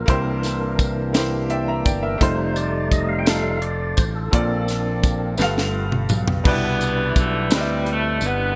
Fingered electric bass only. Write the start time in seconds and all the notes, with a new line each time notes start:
0.08 C2
1.86 G1
2.20 F1
3.98 A1
4.33 A#1
5.39 G1
6.11 B1
6.45 C2
7.16 B1
7.51 D2
8.22 G1